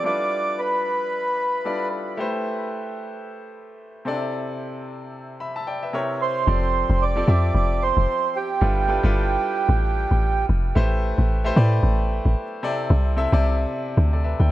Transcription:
0.03 G3 D4 E4 F4 A4 B4 D5
0.59 B4
1.65 G3 D4 E4 F4 A4 D5
2.17 A3 E4 G4 B4 C5
4.05 C3 C4 D4 A4 D5
4.13 E4
5.40 E5 B5
5.56 E5 A5
5.67 D5 G5
5.83 B4 E5
5.93 C3 C4 E4 A#4 C#5
6.22 C5
6.47 F1 F3 C4 G4 A4 D5
6.90 F1
7.02 D5
7.16 F3 C4 G4 A4 D5
7.27 F2 F3 C4 G4 A4 E5
7.55 F1 D5
7.83 C5
7.97 F1
8.36 G4
8.61 G1 G3 D4 E4 F4 A4 B4
8.88 G3 D4 E4 F4 A4 B4
9.03 G1 G3 D4 E4 F4 A4 B4
9.69 A1
10.11 A1
10.49 F1
10.75 A1 A3 E4 G4 B4 C5
11.18 A1
11.44 A3 E4 G4 B4 C5
11.56 A2 A3 E4 G4 B4 D5
11.83 A1
12.25 A1
12.63 C3 C4 E4 A4 D5
12.90 C2
13.16 C3 C4 E4 A4 E5
13.32 C2 C3 C4 E4 A4 D5
13.97 D2
14.13 A4 D5
14.24 B4 E5
14.40 D2 D5 G5

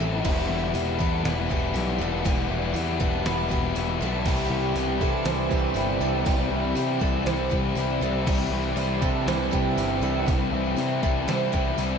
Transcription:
Already playing: A1 E3
0.00 A3 C4 E4 A4, snare
0.23 E1 E2 B2 E3 G3 B3 E4 G4, kick, tambourine, crash
0.47 E1 E3 G3 B3 E4
0.73 E1 E3 G3 B3 E4, open hi-hat, tambourine
0.99 E2 E3 G3 B3 E4 A4, kick, tambourine
1.24 E1 E2 B2 E3 G3 B3 E4 B4, snare, open hi-hat
1.49 E1 E3 G3 B3 E4 G4, kick, tambourine
1.74 B1 E3 G3 B3 E4, open hi-hat, tambourine
1.86 tambourine
1.98 E1 E3 G3 B3 E4 A4, tambourine
2.25 E1 E2 B2 E3 G3 B3 E4 G4, kick, open hi-hat, tambourine
2.49 E1 E3 G3 B3 E4, tambourine
2.63 tambourine
2.74 E2 E3 G3 B3 E4, open hi-hat, tambourine
2.87 tambourine
2.99 E1 E3 G3 B3 E4 A4, kick, tambourine
3.25 E1 E2 B2 E3 G3 B3 E4 B4, snare, open hi-hat
3.49 E1 E3 G3 B3 E4 G4, kick, tambourine
3.63 tambourine
3.74 E1 E3 G3 B3 E4, open hi-hat, tambourine
4.00 B1 E3 G3 B3 E4 A4, snare, tambourine
4.14 tambourine
4.25 C2 C3 E3 G3 C4 D4 E4 G4, kick, tambourine, crash
4.49 C2 G3 C4 E4
4.75 C2 E3 G3 C4 E4, open hi-hat, tambourine
5.00 C3 G3 C4 E4 A4, kick, tambourine
5.25 C2 C3 E3 G3 C4 E4 C5, snare, open hi-hat
5.50 C2 G3 C4 E4 G4, kick, tambourine
5.74 G1 E3 G3 C4 E4, open hi-hat, tambourine
6.00 C2 G3 C4 E4 A4, tambourine
6.25 C2 C3 E3 G3 C4 E4 G4, kick, open hi-hat, tambourine
6.51 C2 G3 C4 E4
6.75 C3 E3 G3 C4 E4, open hi-hat, tambourine
6.99 C2 G3 C4 E4 A4, kick, tambourine
7.26 C2 C3 E3 G3 C4 E4 C5, snare, open hi-hat
7.50 C2 G3 C4 E4 G4, kick, tambourine
7.75 C2 E3 G3 C4 E4, open hi-hat, tambourine
7.89 tambourine
8.01 C2 G3 C4 E4 A4, tambourine
8.25 C2 C3 E3 G3 C4 D4 E4 G4, kick, crash, tambourine
8.51 C2 G3 C4 E4
8.76 C2 E3 G3 C4 E4, open hi-hat, tambourine
9.01 C3 G3 C4 E4 A4, kick, tambourine
9.26 C2 C3 E3 G3 C4 E4 C5, snare, open hi-hat
9.51 C2 G3 C4 E4 G4, kick, tambourine
9.76 G1 E3 G3 C4 E4, open hi-hat, tambourine
10.01 C2 G3 C4 E4 A4, tambourine
10.26 C2 C3 E3 G3 C4 E4 G4, kick, open hi-hat, tambourine
10.40 tambourine
10.52 C2 G3 C4 E4
10.64 tambourine
10.77 C3 E3 G3 C4 E4, open hi-hat, tambourine
10.90 tambourine
11.02 C2 G3 C4 E4 A4, kick, tambourine
11.27 C2 C3 E3 G3 C4 E4 C5, snare, open hi-hat, tambourine
11.40 tambourine
11.52 C2 G3 C4 E4 G4, kick, tambourine
11.78 C2 E3 G3 C4 E4, open hi-hat, tambourine

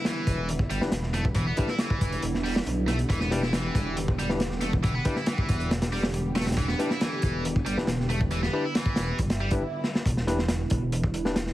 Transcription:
Already playing: D3 G3 B3 E4
0.05 E3, snare, closed hi-hat
0.27 E1, kick, closed hi-hat
0.49 closed hi-hat
0.59 kick
0.70 G1 G3, closed hi-hat
0.81 E1 D4 E4 G4 B4, snare
0.92 E1, snare, closed hi-hat
1.03 snare
1.13 A3, snare, closed hi-hat
1.25 kick
1.35 E3, kick, closed hi-hat
1.47 B3
1.57 G3 D4 E4 G4 B4, kick, closed hi-hat
1.68 E4, snare
1.78 E3, snare, closed hi-hat
1.90 kick
2.01 E1, kick, closed hi-hat
2.12 closed hi-hat
2.22 E1, closed hi-hat
2.35 snare
2.45 G3, open hi-hat
2.56 snare
2.66 B1, closed hi-hat
2.88 A3, snare, closed hi-hat
2.99 closed hi-hat
3.10 E1 E3 G4, kick, closed hi-hat
3.20 B3, snare
3.31 G3 D4 E4 G4 B4, snare, closed hi-hat
3.42 E4, snare
3.53 E3, snare, closed hi-hat
3.75 E1, kick, closed hi-hat
3.97 closed hi-hat
4.08 kick
4.19 G3, closed hi-hat
4.29 D4 E4 G4 B4, snare
4.40 snare, closed hi-hat
4.51 snare
4.61 A3, snare, closed hi-hat
4.73 kick
4.83 E3, kick, closed hi-hat
4.95 B3
5.05 G3 D4 E4 G4 B4, kick, closed hi-hat
5.16 E4, snare
5.26 E3, snare, closed hi-hat
5.38 kick
5.49 E1, kick, closed hi-hat
5.60 closed hi-hat
5.71 snare, closed hi-hat
5.82 snare, closed hi-hat
5.92 G3, open hi-hat
6.03 snare
6.14 closed hi-hat
6.35 A3, snare, closed hi-hat
6.41 snare, closed hi-hat
6.47 snare, closed hi-hat
6.52 snare, closed hi-hat
6.57 E3, kick, closed hi-hat
6.68 B3, snare
6.79 G3 D4 E4 G4 B4, snare, closed hi-hat
6.90 E4, snare
7.01 E3, snare, closed hi-hat
7.22 E1, kick, closed hi-hat
7.45 closed hi-hat
7.56 kick
7.66 G1 G3, closed hi-hat
7.77 E1 D4 E4 G4 B4, snare
7.87 E1, snare, closed hi-hat
8.00 snare
8.09 A3, closed hi-hat
8.21 kick
8.31 E3, closed hi-hat
8.43 B3, snare
8.53 G3 D4 E4 G4 B4
8.65 E4
8.75 E3, snare, closed hi-hat
8.86 kick
8.96 E1, snare, closed hi-hat
9.18 G1, kick, closed hi-hat, swell
9.30 snare, closed hi-hat
9.41 G3
9.51 D4 E4 G4 B4, kick, closed hi-hat
9.84 snare
9.95 snare
10.05 E1 D3 G3 B3 E4, kick, closed hi-hat
10.17 snare
10.27 D4 E4 G4 B4, snare, closed hi-hat
10.39 snare
10.48 snare, closed hi-hat
10.70 E1, kick, closed hi-hat
10.92 closed hi-hat
11.03 kick
11.14 closed hi-hat
11.25 D4 E4 G4 B4, snare
11.36 snare, closed hi-hat
11.47 snare

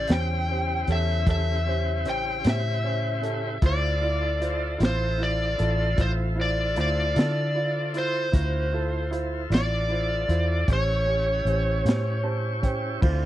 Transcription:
Already playing: C#3 E4 G4 C5 D5
0.07 E2 C#4 G4 C5, snare, closed hi-hat
0.12 G5
0.49 C#4 G4 C5
0.87 E2 C#4 G4 A4, closed hi-hat
0.92 E5
1.27 E2 C#4 G4 A4, kick, closed hi-hat
1.31 E5
1.66 C#4 G4 C5
2.05 A1 C#4 G4 C5, closed hi-hat
2.09 G5
2.44 A2 C#4 G4 C5, snare, closed hi-hat
2.49 E5
2.84 C#4 G4 C5
3.21 C#4 G4 A4, closed hi-hat
3.62 D2 E4 F4 A4 C5, kick, closed hi-hat
3.66 D5
4.01 E4 F4 D5
4.40 E4 F4 C5, closed hi-hat
4.78 A1 E4 F4 C5, closed hi-hat
4.83 C5, snare
5.18 E4 F4 C5
5.23 D5
5.58 A1 E4 F4 A4, closed hi-hat
5.96 A1 E4 F4 C5, kick, closed hi-hat
6.01 C5
6.35 E4 F4 C5
6.41 D5
6.75 D2 E4 F4 C5, closed hi-hat
6.81 D5
7.15 D3 E4 F4 A4, closed hi-hat
7.19 snare
7.54 E4 F4 D5
7.94 E4 F4 C5, closed hi-hat
7.99 C5
8.32 D2 C#4 E4 F4 F#4 A#4 C5, kick, closed hi-hat
8.72 E4 F4 A4 C5
9.11 E4 F4 C5, closed hi-hat
9.50 A1 E4 F4 D5, closed hi-hat
9.55 snare
9.89 E4 F4 C5
10.28 E2 E4 F4 C5, closed hi-hat
10.68 A1 C#4 E4 G4 C5 C#5, kick, closed hi-hat
10.73 C#5
11.06 C#4 G4 C#5
11.45 A1 C#4 G4 C5, closed hi-hat
11.84 A2 C#4 G4 C5, closed hi-hat
11.89 snare
12.23 C#4 G4 C5 A5
12.62 C#4 G4 C5 G5, kick, closed hi-hat
13.01 D2 C4 D4 E4 F4 A4 C5, kick, crash

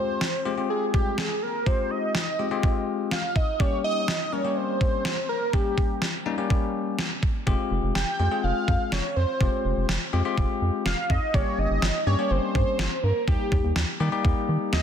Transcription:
Already playing: G#3 C4 F4 G4 C5
0.21 snare
0.46 G#3 C4 F4 G4
0.58 G#3 C4 F4 G4
0.70 G#4
0.94 G4, kick
1.18 G#4, snare
1.42 A#4
1.66 G#3 C4 F4 G4 C5, kick
1.91 D#5
2.15 snare
2.39 G#3 C4 F4 G4
2.51 G#3 C4 F4 G4
2.63 kick
3.11 F5, snare
3.36 D#5, kick
3.60 G3 A#3 C#4 G4 C#5, kick
3.84 D#5
4.08 snare
4.33 G3 A#3 C#4 A#4 C#5
4.45 G3 A#3 C#4 G4
4.56 C5
4.81 kick
5.05 snare
5.29 A#4
5.53 G3 A#3 C#4 G4, kick
5.78 kick
6.02 snare
6.26 G3 A#3 C#4 D#4
6.38 G3 A#3 C#4 G4
6.50 kick
6.99 snare
7.23 kick
7.47 F1 G#3 C4 F4 G4, kick
7.71 F1
7.83 F1
7.95 F1 G5, snare
8.19 F2 G#3 C4 F4 G4
8.31 G#3 C4 F4 G#4
8.44 F1 F5
8.68 F2, kick
8.92 F1 C#5, snare
9.16 F2 C5
9.41 F1 G#3 C4 F4 G4, kick
9.65 F1
9.77 F1
9.89 F1, snare
10.13 F2 G#3 C4 F4 G4
10.25 G#3 C4 F4 G4
10.38 F1, kick
10.62 F2
10.86 F1 F5, snare
11.10 F2 D#5, kick
11.34 G1 G3 A#3 C#4 G4 C#5, kick
11.58 G1 D#5
11.70 G1
11.82 G1, snare
12.07 G2 G3 A#3 C#4 G4 C#5
12.19 G3 A#3 C#4 G4
12.31 G1 C5
12.55 G2, kick
12.79 G1, snare
13.03 G2 A#4
13.28 D#2 G3 A#3 D#4 G4, kick
13.52 D#2, kick
13.64 D#2
13.76 D#2, snare
14.00 D#3 G3 A#3 D#4 G4
14.12 G3 A#3 D#4 G4
14.25 D#2, kick
14.49 D#3
14.73 D#2 D#5, snare

